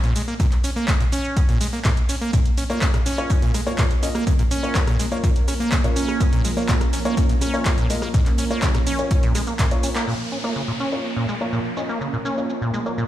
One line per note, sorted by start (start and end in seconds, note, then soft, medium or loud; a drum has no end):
0.04 0.14 A#2 loud
0.04 snare medium
0.04 closed hi-hat soft
0.04 shaker soft
0.15 0.22 G#3 medium
0.15 closed hi-hat medium
0.15 open hi-hat loud
0.15 shaker medium
0.28 0.34 A#3 medium
0.28 shaker soft
0.39 0.47 A#2 loud
0.39 kick loud
0.39 closed hi-hat medium
0.39 shaker soft
0.51 clap soft
0.51 closed hi-hat soft
0.51 shaker soft
0.64 0.71 C#4 medium
0.64 closed hi-hat medium
0.64 open hi-hat loud
0.64 shaker medium
0.76 0.86 A#3 loud
0.76 snare soft
0.76 shaker soft
0.88 0.95 C#3 medium
0.88 kick loud
0.88 snare loud
0.88 clap loud
0.88 closed hi-hat medium
0.88 shaker soft
1.00 1.04 A#2 loud
1.00 snare soft
1.00 closed hi-hat soft
1.00 shaker soft
1.12 1.38 C#4 loud
1.12 closed hi-hat medium
1.12 open hi-hat loud
1.12 shaker medium
1.25 closed hi-hat soft
1.25 shaker soft
1.36 1.41 A#3 medium
1.36 kick loud
1.36 closed hi-hat medium
1.36 shaker soft
1.49 1.59 A#2 loud
1.49 snare soft
1.49 closed hi-hat soft
1.49 shaker soft
1.61 1.67 G#3 medium
1.61 closed hi-hat medium
1.61 open hi-hat loud
1.61 shaker medium
1.72 1.80 A#3 medium
1.72 snare soft
1.72 shaker soft
1.84 1.92 A#2 loud
1.84 kick loud
1.84 snare loud
1.84 clap loud
1.84 closed hi-hat medium
1.84 shaker soft
1.97 closed hi-hat soft
1.97 shaker soft
2.09 2.16 C#4 medium
2.09 closed hi-hat medium
2.09 open hi-hat loud
2.09 shaker medium
2.21 2.31 A#3 loud
2.21 shaker soft
2.33 2.40 A#2 loud
2.33 10.04 F3 medium
2.33 10.04 A#3 medium
2.33 10.04 C#4 medium
2.33 10.04 A#4 medium
2.33 kick loud
2.33 closed hi-hat medium
2.33 shaker soft
2.46 closed hi-hat soft
2.46 shaker soft
2.58 2.64 C#4 medium
2.58 closed hi-hat medium
2.58 open hi-hat loud
2.58 shaker medium
2.70 2.80 A#3 loud
2.70 2.80 F4 medium
2.70 2.80 A#4 medium
2.70 2.80 C#5 medium
2.70 snare soft
2.70 shaker soft
2.81 2.88 C#3 medium
2.81 kick loud
2.81 snare loud
2.81 clap loud
2.81 closed hi-hat medium
2.81 shaker soft
2.94 2.98 A#2 loud
2.94 cross-stick medium
2.94 closed hi-hat soft
2.94 shaker soft
3.06 3.32 C#4 loud
3.06 snare medium
3.06 closed hi-hat medium
3.06 open hi-hat loud
3.06 shaker medium
3.18 3.28 F4 medium
3.18 3.28 A#4 medium
3.18 3.28 C#5 loud
3.18 closed hi-hat soft
3.18 shaker soft
3.29 3.34 A#3 medium
3.29 kick loud
3.29 closed hi-hat medium
3.29 shaker soft
3.42 3.52 A#2 loud
3.42 snare soft
3.42 closed hi-hat soft
3.42 shaker soft
3.54 3.61 G#3 medium
3.54 cross-stick soft
3.54 closed hi-hat medium
3.54 open hi-hat loud
3.54 shaker medium
3.66 3.73 A#3 medium
3.66 3.82 F4 medium
3.66 3.82 A#4 medium
3.66 3.82 C#5 loud
3.66 shaker soft
3.78 3.85 A#2 loud
3.78 kick loud
3.78 snare loud
3.78 clap loud
3.78 closed hi-hat medium
3.78 shaker soft
3.91 snare soft
3.91 closed hi-hat soft
3.91 shaker soft
4.03 4.09 C#4 medium
4.03 4.13 F4 medium
4.03 4.13 A#4 medium
4.03 4.13 D#5 medium
4.03 closed hi-hat medium
4.03 open hi-hat loud
4.03 shaker medium
4.15 4.25 A#3 loud
4.15 cross-stick medium
4.15 shaker soft
4.27 4.34 C#3 medium
4.27 kick loud
4.27 closed hi-hat medium
4.27 shaker soft
4.39 4.43 A#2 loud
4.39 closed hi-hat soft
4.39 shaker soft
4.51 4.77 C#4 loud
4.51 closed hi-hat medium
4.51 open hi-hat loud
4.51 shaker medium
4.63 4.79 F4 medium
4.63 4.79 A#4 medium
4.63 4.79 C#5 medium
4.63 snare soft
4.63 shaker soft
4.74 4.79 A#3 medium
4.74 kick loud
4.74 snare loud
4.74 clap loud
4.74 closed hi-hat medium
4.74 shaker soft
4.87 4.97 A#2 loud
4.87 cross-stick medium
4.87 snare soft
4.87 closed hi-hat medium
4.87 shaker soft
4.99 5.06 G#3 medium
4.99 closed hi-hat medium
4.99 open hi-hat loud
4.99 shaker medium
5.12 5.18 A#3 medium
5.12 5.21 F4 medium
5.12 5.21 A#4 medium
5.12 5.21 C#5 medium
5.12 closed hi-hat soft
5.12 shaker soft
5.24 5.30 A#2 loud
5.24 kick loud
5.24 closed hi-hat medium
5.24 shaker soft
5.36 snare soft
5.36 closed hi-hat medium
5.36 shaker soft
5.48 5.55 C#4 medium
5.48 cross-stick soft
5.48 closed hi-hat medium
5.48 open hi-hat loud
5.48 shaker medium
5.60 5.70 A#3 medium
5.60 snare soft
5.60 shaker soft
5.71 5.79 C#3 medium
5.71 kick loud
5.71 snare loud
5.71 clap loud
5.71 closed hi-hat medium
5.71 shaker soft
5.84 5.88 A#2 loud
5.84 6.54 F4 medium
5.84 6.54 A#4 medium
5.84 6.54 C#5 medium
5.84 closed hi-hat medium
5.84 shaker soft
5.96 6.22 C#4 loud
5.96 closed hi-hat medium
5.96 open hi-hat loud
5.96 shaker medium
6.08 cross-stick medium
6.08 shaker soft
6.20 6.24 A#3 medium
6.20 kick loud
6.20 closed hi-hat medium
6.20 shaker soft
6.33 6.42 A#2 loud
6.33 closed hi-hat medium
6.33 shaker soft
6.44 6.51 G#3 medium
6.44 closed hi-hat medium
6.44 open hi-hat loud
6.44 shaker medium
6.57 6.63 A#3 medium
6.57 6.67 F4 medium
6.57 6.67 A#4 medium
6.57 6.67 C#5 medium
6.57 snare soft
6.57 shaker soft
6.68 6.76 A#2 loud
6.68 kick loud
6.68 snare loud
6.68 clap loud
6.68 closed hi-hat medium
6.68 shaker soft
6.81 cross-stick medium
6.81 closed hi-hat medium
6.81 shaker soft
6.93 7.00 C#4 medium
6.93 snare medium
6.93 closed hi-hat medium
6.93 open hi-hat loud
6.93 shaker medium
7.05 7.15 A#3 loud
7.05 7.15 F4 medium
7.05 7.15 A#4 medium
7.05 7.15 C#5 loud
7.05 closed hi-hat soft
7.05 shaker soft
7.17 7.24 C#3 medium
7.17 kick loud
7.17 closed hi-hat medium
7.17 shaker soft
7.29 7.33 A#2 loud
7.29 snare medium
7.29 closed hi-hat medium
7.29 shaker soft
7.41 7.67 C#4 loud
7.41 cross-stick soft
7.41 closed hi-hat medium
7.41 open hi-hat loud
7.41 shaker medium
7.54 7.69 F4 medium
7.54 7.69 A#4 medium
7.54 7.69 C#5 loud
7.54 shaker soft
7.65 7.70 A#3 medium
7.65 kick loud
7.65 snare loud
7.65 clap loud
7.65 closed hi-hat medium
7.65 shaker soft
7.78 7.88 A#2 loud
7.78 snare medium
7.78 closed hi-hat medium
7.78 shaker soft
7.90 7.97 G#3 medium
7.90 8.00 F4 medium
7.90 8.00 A#4 medium
7.90 8.00 D#5 medium
7.90 closed hi-hat medium
7.90 open hi-hat loud
7.90 shaker medium
8.02 8.09 A#3 medium
8.02 cross-stick medium
8.02 shaker soft
8.14 8.21 A#2 loud
8.14 kick loud
8.14 closed hi-hat medium
8.14 shaker soft
8.26 clap soft
8.26 closed hi-hat medium
8.26 closed hi-hat soft
8.26 shaker soft
8.38 8.45 C#4 medium
8.38 closed hi-hat medium
8.38 open hi-hat loud
8.38 shaker medium
8.50 8.60 A#3 loud
8.50 8.66 F4 medium
8.50 8.66 A#4 medium
8.50 8.66 C#5 medium
8.50 snare soft
8.50 shaker soft
8.62 8.69 C#3 medium
8.62 kick loud
8.62 snare loud
8.62 clap loud
8.62 closed hi-hat medium
8.62 shaker soft
8.75 8.79 A#2 loud
8.75 cross-stick medium
8.75 snare soft
8.75 closed hi-hat medium
8.75 shaker soft
8.87 9.12 C#4 loud
8.87 closed hi-hat medium
8.87 open hi-hat loud
8.87 shaker medium
8.99 9.09 F4 medium
8.99 9.09 A#4 medium
8.99 9.09 C#5 medium
8.99 closed hi-hat soft
8.99 shaker soft
9.11 9.15 A#3 medium
9.11 kick loud
9.11 closed hi-hat medium
9.11 shaker soft
9.23 9.33 A#2 loud
9.23 snare soft
9.23 closed hi-hat medium
9.23 shaker soft
9.35 9.42 G#3 medium
9.35 cross-stick soft
9.35 closed hi-hat medium
9.35 open hi-hat loud
9.35 shaker medium
9.47 9.54 A#3 medium
9.47 snare soft
9.47 closed hi-hat soft
9.47 shaker soft
9.59 9.66 A#2 loud
9.59 kick loud
9.59 snare loud
9.59 clap loud
9.59 closed hi-hat medium
9.59 shaker soft
9.71 10.06 F4 medium
9.71 10.06 A#4 medium
9.71 10.06 C#5 medium
9.71 closed hi-hat medium
9.71 shaker soft
9.83 9.90 C#4 medium
9.83 closed hi-hat medium
9.83 open hi-hat loud
9.83 shaker medium
9.96 10.05 A#3 loud
9.96 clap medium
9.96 shaker soft
10.07 10.14 A#2 loud
10.07 13.08 F3 medium
10.07 13.08 A#3 medium
10.07 13.08 C#4 medium
10.07 13.08 A#4 medium
10.07 crash medium
10.07 downlifter medium
10.07 shaker soft
10.20 shaker soft
10.32 10.38 C#4 medium
10.32 shaker medium
10.44 10.54 A#3 medium
10.44 10.54 F4 medium
10.44 10.54 A#4 medium
10.44 10.54 C#5 medium
10.44 shaker soft
10.56 10.63 C#3 medium
10.56 shaker soft
10.68 10.72 A#2 loud
10.68 shaker soft
10.80 11.06 C#4 medium
10.80 shaker medium
10.92 11.02 F4 medium
10.92 11.02 A#4 medium
10.92 11.02 C#5 loud
10.92 shaker soft
11.04 11.08 A#3 medium
11.04 shaker soft
11.16 11.26 A#2 loud
11.16 shaker soft
11.29 11.35 G#3 medium
11.29 shaker medium
11.41 11.47 A#3 medium
11.41 11.56 F4 medium
11.41 11.56 A#4 medium
11.41 11.56 C#5 medium
11.41 shaker soft
11.53 11.59 A#2 loud
11.53 shaker soft
11.65 shaker soft
11.77 11.84 C#4 medium
11.77 11.87 F4 medium
11.77 11.87 A#4 medium
11.77 11.87 D#5 medium
11.77 shaker medium
11.89 11.99 A#3 medium
11.89 shaker soft
12.01 12.08 C#3 medium
12.01 shaker soft
12.13 12.17 A#2 loud
12.13 shaker soft
12.25 12.51 C#4 loud
12.25 shaker medium
12.38 12.53 F4 medium
12.38 12.53 A#4 medium
12.38 12.53 C#5 medium
12.38 shaker soft
12.49 12.53 A#3 medium
12.49 shaker soft
12.62 12.72 A#2 loud
12.62 shaker soft
12.74 12.80 G#3 medium
12.74 shaker medium
12.86 12.92 A#3 medium
12.86 12.96 F4 medium
12.86 12.96 A#4 medium
12.86 12.96 C#5 medium
12.86 shaker soft
12.98 13.05 A#2 loud
12.98 shaker soft